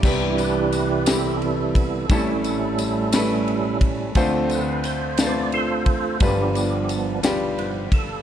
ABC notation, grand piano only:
X:1
M:6/8
L:1/8
Q:3/8=58
K:C
V:1 name="Grand piano"
[G,B,CEB]3 [G,B,CEG]3 | [G,A,C^CEA]3 [G,A,CEB]3 | [A,CDFc]3 [A,CDFBc]3 | [G,B,DFB]3 [G,B,DFG]3 |]
V:2 name="Grand piano" clef=bass
[C,,C,]6 | [A,,,A,,]6 | [D,,D,]6 | [G,,,G,,]6 |]